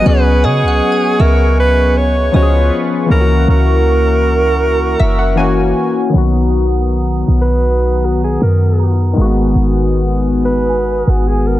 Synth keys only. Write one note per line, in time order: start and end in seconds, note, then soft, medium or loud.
0.02 2.28 F#3 medium
0.02 2.29 B3 medium
0.07 2.30 C#4 medium
0.07 2.31 G#4 medium
2.32 3.09 F3 medium
2.32 3.09 B3 medium
2.32 3.10 C#4 medium
2.36 2.41 F#4 medium
2.42 3.14 G#4 medium
3.06 5.32 E3 medium
3.06 5.33 A#3 medium
3.12 5.34 C#4 medium
3.12 3.18 E4 medium
3.20 5.38 F#4 medium
5.00 5.17 E5 medium
5.19 5.36 F#5 medium
5.36 6.12 E3 medium
5.36 6.13 A#3 medium
5.36 6.14 C#4 medium
5.36 6.14 F#4 medium
5.36 6.09 G#5 medium
6.10 9.11 D#3 medium
6.10 9.13 F#3 medium
6.15 9.14 B3 medium
6.15 9.15 F#4 medium
9.13 11.60 D#3 medium
9.13 11.60 G#3 medium
9.19 9.25 A#3 medium
9.19 11.60 F#4 medium
9.25 11.60 B3 medium